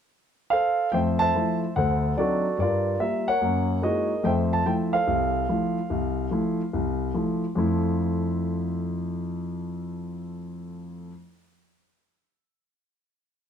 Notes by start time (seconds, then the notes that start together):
0.50 A4 C5 F5
0.92 F2 A3 C5 E5 G5
1.19 C5 E5 A5
1.35 F3 A3 E4
1.76 D2 A4 C5 F#5
2.16 F#3 C4 D4 D#4 F#4 A4 D5
2.58 G2 D5
2.62 F4 A#4
3.00 G3 A#3 F4 E5
3.28 A#4 C#5 F#5
3.41 F#2 A#3
3.82 G#3 A#3 D#4 E4 F#4 G#4 A#4 D#5
4.23 F2 A3 C5 E5 G5
4.53 A5
4.66 F3 A3 E4 G5
4.93 A4 C5 F5
5.07 C2
5.49 F3 A3 E4
5.90 C2
6.31 F3 A3 E4
6.73 C2
7.14 F3 A3 E4
7.55 F2 F3 A3 E4